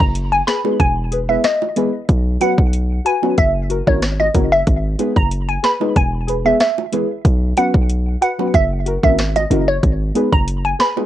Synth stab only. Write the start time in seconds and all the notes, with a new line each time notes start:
0.47 G#4 B4
0.64 G#3 B3 D#4 G#4 B4
1.12 G#4 B4
1.29 G#3 B3 E4 G#4 B4
1.76 G#3 B3 E4 G#4 B4
2.40 F#3 B3 C#4 F#4 B4
3.05 F#4 B4
3.22 F#3 B3 C#4 F#4 B4
3.69 F#4 A#4
3.87 A#3 C#4 E4 F#4 A#4
4.34 A#3 C#4 E4 F#4 A#4
4.99 G#3 B3 D#4 G#4 B4
5.63 G#4 B4
5.80 G#3 B3 D#4 G#4 B4
6.27 G#4 B4
6.45 G#3 B3 E4 G#4 B4
6.92 G#3 B3 E4 G#4 B4
7.57 F#3 B3 C#4 F#4 B4
8.21 F#4 B4
8.38 F#3 B3 C#4 F#4 B4
8.86 F#4 A#4
9.03 A#3 C#4 E4 F#4 A#4
9.50 A#3 C#4 E4 F#4 A#4
10.15 G#3 B3 D#4 G#4 B4
10.79 G#4 B4
10.96 G#3 B3 D#4 G#4 B4